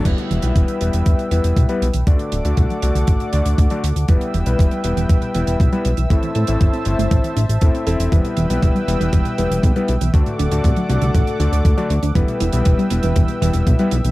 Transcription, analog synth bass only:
\new Staff \with { instrumentName = "Analog synth bass" } { \clef bass \time 4/4 \key e \minor \tempo 4 = 119 e,,16 r16 e,,16 b,,16 e,,16 r16 e,,16 e,,16 e,,16 r16 e,,16 e,,16 b,,16 r16 b,,16 b,,16 | d,16 r16 d,,16 d,16 c,16 r16 c,16 c,16 a,,16 r16 d,16 d,16 d,16 r16 d,16 d,16 | e,,16 r16 e,,16 b,,16 e,,16 r16 e,,16 e,,16 e,,16 r16 e,,16 e,,16 b,,16 r16 b,,16 b,,16 | a,,16 r16 a,16 a,,16 g,,16 r16 g,,16 g,,16 a,,16 r16 a,,16 a,,16 e,,16 r16 e,,16 e,,16 |
e,,16 r16 e,,16 b,,16 e,,16 r16 e,,16 e,,16 e,,16 r16 e,,16 e,,16 b,,16 r16 b,,16 b,,16 | d,16 r16 d,,16 d,16 c,16 r16 c,16 c,16 a,,16 r16 d,16 d,16 d,16 r16 d,16 d,16 | e,,16 r16 e,,16 b,,16 e,,16 r16 e,,16 e,,16 e,,16 r16 e,,16 e,,16 b,,16 r16 b,,16 b,,16 | }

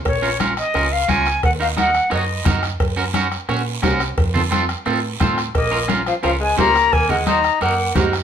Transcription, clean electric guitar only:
\new Staff \with { instrumentName = "Clean electric guitar" } { \time 4/4 \key bes \minor \tempo 4 = 175 r8 <des' f' bes'>8 <des' f' bes'>8 r8 <des' f' bes'>8 r8 <des' f' bes'>8 r8 | r8 <ees' ges' bes'>8 <ees' ges' bes'>8 r8 <ees' ges' des''>8 r8 <ees' ges' bes'>8 r8 | r8 <des' ges' bes'>8 <des' ges' bes'>8 r8 <des' ges' des''>8 r8 <des' ges' bes'>8 r8 | r8 <c' f' a'>8 <c' f' a'>8 r8 <c' f' a'>8 r8 <c' f' a'>8 r8 |
r8 <des' f' bes'>8 <des' f' bes'>8 r8 <des' f' bes'>8 r8 <des' f' c''>8 r8 | r8 <ees' ges' bes'>8 <ees' ges' c''>8 r8 <ees' ges' bes'>8 r8 <ees' ges' bes'>8 r8 | }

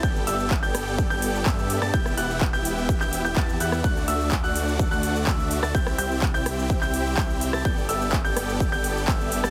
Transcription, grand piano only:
\new Staff \with { instrumentName = "Grand piano" } { \time 4/4 \key g \major \tempo 4 = 126 g'''8 e'''8 r16 g'''4 g'''8. e'''8. a'''16 | g'''8 fis'''8 r16 g'''4 g'''8 g'''16 r8 fis'''8 | fis'''8 e'''8 r16 fis'''4 fis'''8. e'''8. a'''16 | g'''8 g'''8 r16 g'''4 g'''8. g'''8. a'''16 |
g'''8 e'''8 r16 g'''4 g'''8. e'''8. a'''16 | }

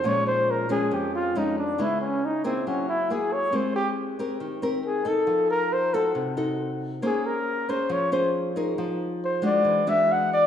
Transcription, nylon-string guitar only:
\new Staff \with { instrumentName = "Nylon-string guitar" } { \time 4/4 \key bes \dorian \tempo 4 = 137 << { <f aes des'>4. <f aes des'>4. <f aes des'>8 r8 | <aes ces' fes'>4 r8 <bes fes' aes'>4. <bes fes' aes'>4 | <c' g' bes'>4. <c' g' bes'>4 <c' g' bes'>4 <ees' a'>8~ | <ees' a'>4. <ees' ges' a'>4 <ees' ges' a'>4. |
<des' aes' c''>4. <des' aes' c''>4 <des' aes' c''>4 <ees' aes' bes'>8~ | <ees' aes' bes'>4. <aes d' ges'>4 <gis d' fis'>4. | } \\ { bes,2 f,2 | des2 ges2 | aes2 ees2 | f2 c2 |
bes2 f2 | f2 e2 | } >> }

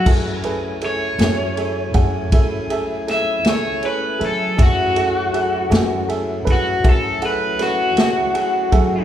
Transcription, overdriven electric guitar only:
\new Staff \with { instrumentName = "Overdriven electric guitar" } { \time 12/8 \key fis \minor \tempo 4. = 53 r4 cis''2. e''8 cis''8 b'8 a'8 | fis'2 r8 fis'8 a'8 b'8 fis'2 | }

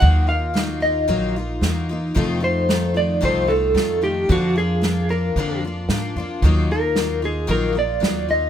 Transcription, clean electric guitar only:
\new Staff \with { instrumentName = "Clean electric guitar" } { \time 4/4 \key ees \minor \tempo 4 = 113 ges''8 f''4 ees''4 r4. | r8 c''4 d''8 c''8 a'4 g'8 | ges'8 aes'4 bes'4 r4. | r8 bes'4 aes'8 bes'8 d''4 ees''8 | }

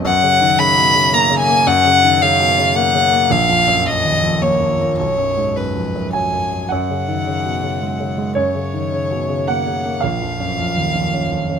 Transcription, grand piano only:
<<
  \new Staff \with { instrumentName = "Grand piano" } { \time 3/4 \key dis \minor \tempo 4 = 109 r2. | r2. | r2. | r2 gis''4 |
fis''2. | cis''2 fis''4 | eis''2. | }
  \new Staff \with { instrumentName = "Grand piano" } { \clef bass \time 3/4 \key dis \minor \tuplet 3/2 { fis,8 cis8 dis8 cis8 b,8 cis8 ais8 cis8 ais8 } | \tuplet 3/2 { fis,8 cis8 dis8 cis8 b,8 cis8 ais8 cis8 ais8 } | \tuplet 3/2 { ais,,8 eis,8 fis,8 eis,8 dis,8 eis,8 ais8 eis,8 ais8 } | \tuplet 3/2 { b,,8 fis,8 gis,8 fis,8 eis,8 fis,8 fis8 fis,8 fis8 } |
\tuplet 3/2 { fis,8 cis8 dis8 cis8 b,8 cis8 gis8 cis8 gis8 } | \tuplet 3/2 { fis,8 cis8 dis8 cis8 b,8 cis8 ais8 cis8 ais8 } | \tuplet 3/2 { ais,,8 eis,8 fis,8 eis,8 dis,8 eis,8 cis'8 eis,8 cis'8 } | }
>>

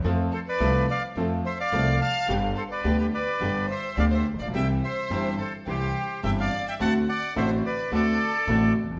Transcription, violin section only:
\new Staff \with { instrumentName = "Violin section" } { \time 4/4 \key c \major \tempo 4 = 107 r8 a'16 b'8. d''8 r8 c''16 d''8. f''8 | r8 a'16 b'8 g'16 b'4 c''8 d''16 c''8 d''16 | e''8 c''4 a'8 g'4 e''16 d''8 e''16 | fis''8 d''8 c''8 b'8 a'4. r8 | }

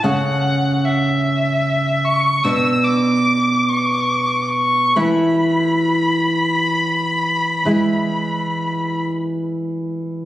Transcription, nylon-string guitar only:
\new Staff \with { instrumentName = "Nylon-string guitar" } { \time 12/8 \key e \mixolydian \tempo 4. = 46 <cis a cis'>2. <b, b d'>2. | <e a e'>2. <e gis e'>2. | }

